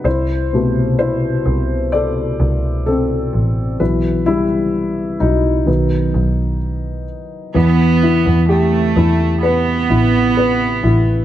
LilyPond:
<<
  \new Staff \with { instrumentName = "Upright piano" } { \time 4/4 \key b \phrygian \tempo 4 = 64 <e' c''>4 <e' c''>4 <a' d''>4 <c' a'>4 | <e' b'>8 <g e'>4 <fis dis'>4. r4 | \key e \minor r1 | }
  \new Staff \with { instrumentName = "Upright piano" } { \time 4/4 \key b \phrygian r8 <b, c a>4. r2 | <e fis b>8 r4. <dis fis b>4. r8 | \key e \minor e8 e'8 g'8 e'8 b'8 e'8 b'8 e'8 | }
  \new Staff \with { instrumentName = "Cello section" } { \time 4/4 \key b \phrygian r1 | r1 | \key e \minor b4 a4 b2 | }
  \new Staff \with { instrumentName = "Double bass" } { \clef bass \time 4/4 \key b \phrygian c,4. c,4 c,4 a,,8 | b,,4. b,,8 b,,8 b,,4 r8 | \key e \minor e,8. e,8. e,4 a,,4 a,,8 | }
>>